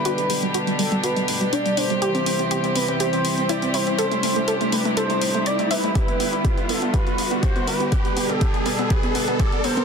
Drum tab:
HH |xxoxxxoxxxoxxxox|xxoxxxoxxxoxxxox|xxoxxxoxxxoxxxox|xxoxxxoxxxoxxxox|
BD |----------------|----------------|----------------|o---o---o---o---|

HH |xxoxxxoxxxoxxxox|
BD |o---o---o---o---|